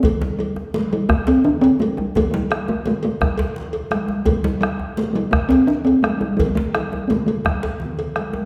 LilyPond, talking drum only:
\new Staff \with { instrumentName = "Talking drum" } { \time 12/8 \key g \mixolydian \tempo 4. = 113 a8 g8 g4 a8 g8 a8 c'8 d'8 c'8 a8 g8 | a16. a32 g8 g8 a8 a8 a8 g4~ g32 r4. r16. | a8 g8 g4 a16. a32 g8 a8 c'8 d'8 c'8 a8 g8 | g8 a8 g8 g16. c'32 a8 a8 g4~ g32 r4. r16. | }